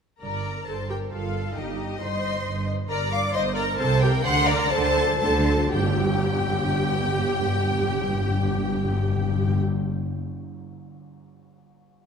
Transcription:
0.22 G1 G2 A#4 D5 A#5
0.67 G1 G2 A4 C5 A5
0.89 G4 A#4 G5
1.12 G1 G2 F4 A4 F5
1.55 G1 G2 D#4 G4 D#5
2.01 G1 G2 C5 D#5 C6
2.46 G1 G2
2.89 G1 G2 A#4 D5 A#5
3.11 D5 F5 D6
3.33 G1 G2 C5 D#5 C6
3.55 A#4 D5 A#5
3.78 C2 C3 A4 C5 A5
4.02 G4 A#4 G5
4.25 D2 D3 C5 F#5 C6
4.47 D3 A#4 D5 A#5
4.56 D3
4.64 D3
4.71 D2 D3 A4 C5 A5
4.80 D3
4.88 D3
4.96 D3
5.05 D3
5.14 D3
5.20 D2 D3 A4 C5 A5
5.30 D3
5.39 D3
5.48 D3
5.57 D3
5.72 G1 G2 G4 G5, tam-tam
5.80 G2
5.87 G2
5.94 G2
6.01 G2
6.07 G2
6.14 G2
6.21 G2
6.27 G2
6.33 G2
6.39 G2
6.46 G2
6.53 G2
6.59 G2
6.66 G2
6.72 G2
6.79 G2
6.86 G2
6.92 G2
7.00 G2
7.06 G2
7.13 G2
7.20 G2
7.26 G2
7.33 G2
7.40 G2
7.47 G2
7.53 G2
7.60 G2
7.67 G2
7.73 G2
7.80 G2
7.87 G2
7.94 G2
8.01 G2
8.08 G2
8.15 G2
8.22 G2
8.29 G2
8.35 G2
8.42 G2
8.49 G2
8.55 G2
8.62 G2
8.69 G2
8.77 G2
8.83 G2
8.90 G2
8.97 G2
9.03 G2
9.09 G2
9.16 G2
9.22 G2
9.29 G2
9.35 G2
9.41 G2
9.48 G2
9.54 G2
9.61 G2
9.68 G2
9.75 G2
9.81 G2

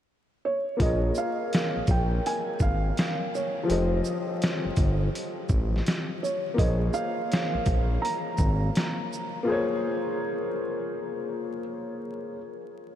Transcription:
0.45 C#5
0.77 A#1 A#3 F4, kick, closed hi-hat
0.81 G#4 A#4 D#5
0.86 C#5
1.15 F5, shaker
1.53 snare, closed hi-hat
1.77 A#1
1.87 A#1 G5, kick, closed hi-hat, shaker
2.26 G#5, closed hi-hat
2.60 G#1 F5, kick, shaker
2.97 snare, closed hi-hat
3.35 C#5, shaker
3.63 F3 F4
3.68 F1 G4 A4 C5, closed hi-hat
3.72 D#5
4.05 shaker
4.42 snare, closed hi-hat
4.66 G1
4.76 G1, kick, closed hi-hat, shaker
5.15 closed hi-hat
5.49 A1, kick, shaker
5.76 snare
5.86 snare, closed hi-hat
6.23 C#5, shaker
6.54 A#3 F4
6.58 A#1 G#4 C5 D#5, kick, closed hi-hat
6.63 C#5
6.94 F5, shaker
7.32 snare, closed hi-hat
7.55 A#1
7.66 A#1, kick, closed hi-hat, shaker
8.02 A#5, closed hi-hat
8.38 G#1, kick, shaker
8.75 snare, closed hi-hat
9.13 shaker
9.43 A#3 F4
9.47 G#4 C5
9.52 C#5

